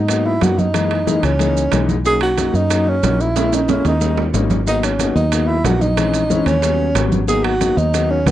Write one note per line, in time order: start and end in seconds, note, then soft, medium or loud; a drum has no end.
0.00 0.38 G#2 medium
0.00 0.28 D#4 medium
0.08 0.32 F#3 medium
0.08 0.32 A#3 medium
0.08 0.32 B3 medium
0.08 0.32 D#4 medium
0.08 high bongo medium
0.08 high conga soft
0.08 high timbale medium
0.08 maracas medium
0.25 0.44 E4 medium
0.25 high bongo soft
0.25 high conga soft
0.41 1.18 F#2 medium
0.41 0.64 F#3 medium
0.41 0.65 A#3 medium
0.41 0.65 B3 medium
0.41 0.65 D#4 medium
0.41 0.60 F#4 medium
0.41 high bongo soft
0.41 low bongo medium
0.41 high conga medium
0.41 high timbale medium
0.41 low timbale medium
0.41 maracas medium
0.58 1.26 D#4 medium
0.58 high bongo soft
0.58 high conga medium
0.58 maracas soft
0.74 0.97 E3 medium
0.74 0.97 G#3 medium
0.74 0.97 A#3 medium
0.74 0.98 D#4 medium
0.74 high bongo medium
0.74 high conga soft
0.74 high timbale medium
0.74 maracas medium
0.91 high bongo soft
0.91 high conga soft
0.91 high timbale medium
1.07 1.30 E3 medium
1.07 1.30 G#3 medium
1.07 1.30 A#3 medium
1.07 1.30 D#4 medium
1.07 high bongo medium
1.07 high conga medium
1.07 low timbale medium
1.07 maracas medium
1.23 1.69 C#2 medium
1.23 1.89 C#4 medium
1.23 high conga soft
1.23 high timbale medium
1.23 maracas soft
1.39 1.62 E3 medium
1.39 1.62 G#3 medium
1.39 1.63 A#3 medium
1.39 1.63 D#4 medium
1.39 high bongo medium
1.39 high conga soft
1.39 high timbale medium
1.39 maracas medium
1.56 high bongo soft
1.56 high conga soft
1.56 maracas medium
1.72 2.49 B1 medium
1.72 1.95 E3 medium
1.72 1.95 G#3 medium
1.72 1.95 A#3 medium
1.72 1.96 D#4 medium
1.72 high bongo soft
1.72 low bongo medium
1.72 high conga soft
1.72 high timbale medium
1.72 low timbale medium
1.72 maracas medium
1.89 high bongo soft
1.89 high conga medium
1.89 maracas soft
2.05 2.28 F#3 medium
2.05 2.28 A#3 medium
2.05 2.28 C#4 medium
2.05 2.28 D#4 medium
2.05 2.21 G#4 loud
2.05 high bongo medium
2.05 high conga soft
2.05 maracas medium
2.21 2.57 F#4 medium
2.21 high bongo soft
2.21 high conga soft
2.21 high timbale medium
2.37 2.60 F#3 medium
2.37 2.61 A#3 medium
2.37 2.61 C#4 medium
2.37 2.61 D#4 medium
2.37 high bongo medium
2.37 high conga medium
2.37 high timbale medium
2.37 low timbale medium
2.37 maracas medium
2.54 2.99 F#2 medium
2.54 2.90 D#4 medium
2.54 high conga soft
2.54 maracas soft
2.70 2.93 F#3 medium
2.70 2.93 A#3 medium
2.70 2.93 C#4 medium
2.70 2.94 D#4 medium
2.70 high bongo medium
2.70 high conga soft
2.70 high timbale medium
2.70 maracas medium
2.87 3.23 C#4 loud
2.87 high bongo soft
2.87 high conga soft
3.03 3.79 A#1 medium
3.03 3.26 F#3 medium
3.03 3.26 A#3 medium
3.03 3.26 C#4 medium
3.03 3.27 D#4 medium
3.03 high bongo soft
3.03 low bongo medium
3.03 high conga medium
3.03 high timbale medium
3.03 low timbale medium
3.03 maracas medium
3.20 3.56 E4 medium
3.20 high bongo soft
3.20 maracas soft
3.36 3.59 G#3 medium
3.36 3.59 A#3 medium
3.36 3.59 C#4 medium
3.36 3.59 E4 medium
3.36 high bongo medium
3.36 high conga soft
3.36 high timbale loud
3.36 maracas medium
3.52 3.71 D#4 medium
3.52 high bongo soft
3.52 high conga soft
3.52 high timbale medium
3.52 maracas medium
3.68 3.91 G#3 medium
3.68 3.91 A#3 medium
3.68 3.92 C#4 medium
3.68 3.86 C#4 medium
3.68 3.92 E4 medium
3.68 high bongo medium
3.68 high conga medium
3.68 high timbale medium
3.68 maracas medium
3.85 4.31 D#2 medium
3.85 4.22 D#4 medium
3.85 high conga soft
3.85 high timbale medium
3.85 maracas soft
4.01 4.24 G3 medium
4.01 4.24 A#3 medium
4.01 4.24 C#4 medium
4.01 4.25 D#4 medium
4.01 high bongo medium
4.01 high conga soft
4.01 low timbale medium
4.01 maracas medium
4.18 high bongo soft
4.18 high conga soft
4.18 low timbale medium
4.34 5.10 G#1 medium
4.34 4.57 G3 medium
4.34 4.57 A#3 medium
4.34 4.57 C#4 medium
4.34 4.57 D#4 medium
4.34 high bongo soft
4.34 low bongo medium
4.34 high conga soft
4.34 low timbale medium
4.34 maracas medium
4.50 high bongo soft
4.50 high conga medium
4.50 low timbale medium
4.50 maracas soft
4.67 4.90 F#3 medium
4.67 4.90 A#3 medium
4.67 4.90 B3 medium
4.67 4.90 D#4 medium
4.67 4.85 D#4 medium
4.67 high bongo medium
4.67 high conga soft
4.67 maracas medium
4.83 5.15 C#4 medium
4.83 high bongo soft
4.83 high conga soft
4.83 high timbale medium
4.83 maracas medium
4.99 5.22 F#3 medium
4.99 5.23 A#3 medium
4.99 5.23 B3 medium
4.99 5.23 D#4 medium
4.99 high bongo medium
4.99 high conga medium
4.99 high timbale medium
4.99 low timbale medium
4.99 maracas medium
5.16 5.61 D#2 medium
5.16 5.49 D#4 medium
5.16 high conga soft
5.16 maracas soft
5.32 5.55 F#3 medium
5.32 5.55 A#3 medium
5.32 5.55 B3 medium
5.32 5.56 D#4 medium
5.32 high bongo medium
5.32 high conga soft
5.32 high timbale medium
5.32 maracas medium
5.48 5.67 E4 medium
5.48 high bongo soft
5.48 high conga soft
5.64 6.41 A#1 medium
5.64 5.88 F#3 medium
5.64 5.88 A#3 medium
5.64 5.88 B3 medium
5.64 5.88 D#4 medium
5.64 5.83 F#4 medium
5.64 high bongo soft
5.64 low bongo medium
5.64 high conga medium
5.64 high timbale medium
5.64 low timbale medium
5.64 maracas medium
5.81 6.46 D#4 medium
5.81 high bongo soft
5.81 high conga medium
5.81 maracas soft
5.97 6.20 E3 medium
5.97 6.21 G#3 medium
5.97 6.21 C4 medium
5.97 6.21 C#4 medium
5.97 high bongo medium
5.97 high timbale loud
5.97 maracas medium
6.14 high bongo soft
6.14 high conga soft
6.14 high timbale medium
6.14 maracas medium
6.30 6.53 E3 medium
6.30 6.54 G#3 medium
6.30 6.54 C4 medium
6.30 6.54 C#4 loud
6.30 high bongo medium
6.30 high conga medium
6.30 low timbale medium
6.30 maracas medium
6.46 6.92 D#2 medium
6.46 7.08 C#4 loud
6.46 high conga soft
6.46 high timbale medium
6.46 maracas soft
6.62 6.86 F#3 medium
6.62 6.86 G3 medium
6.62 6.86 B3 medium
6.62 6.86 C#4 medium
6.62 high bongo medium
6.62 high conga soft
6.62 high timbale medium
6.62 maracas medium
6.79 high bongo soft
6.79 high conga soft
6.95 7.72 G#1 medium
6.95 7.18 F#3 medium
6.95 7.19 G3 medium
6.95 7.19 B3 medium
6.95 7.19 C#4 medium
6.95 high bongo soft
6.95 low bongo medium
6.95 high conga soft
6.95 high timbale medium
6.95 low timbale medium
6.95 maracas medium
7.12 high bongo soft
7.12 high conga medium
7.12 maracas soft
7.28 7.51 F#3 medium
7.28 7.51 A#3 medium
7.28 7.51 B3 medium
7.28 7.52 D#4 medium
7.28 7.46 G#4 loud
7.28 high bongo medium
7.28 high conga soft
7.28 maracas medium
7.44 7.79 F#4 loud
7.44 high bongo soft
7.44 high conga soft
7.44 high timbale medium
7.61 7.84 F#3 medium
7.61 7.84 A#3 medium
7.61 7.84 B3 medium
7.61 7.84 D#4 medium
7.61 high bongo medium
7.61 high conga medium
7.61 high timbale medium
7.61 low timbale medium
7.61 maracas medium
7.77 8.23 D#2 loud
7.77 8.12 D#4 loud
7.77 high conga soft
7.77 maracas soft
7.94 8.17 F#3 medium
7.94 8.17 A#3 medium
7.94 8.17 B3 medium
7.94 8.17 D#4 medium
7.94 high bongo medium
7.94 high conga soft
7.94 high timbale medium
7.94 maracas medium
8.10 8.29 C#4 medium
8.10 high bongo soft
8.10 high conga soft
8.26 8.31 C#2 medium
8.26 8.31 F#3 medium
8.26 8.31 A#3 medium
8.26 8.31 B3 medium
8.26 8.31 D#4 medium
8.26 high bongo soft
8.26 low bongo medium
8.26 high conga medium
8.26 high timbale medium
8.26 low timbale medium
8.26 maracas medium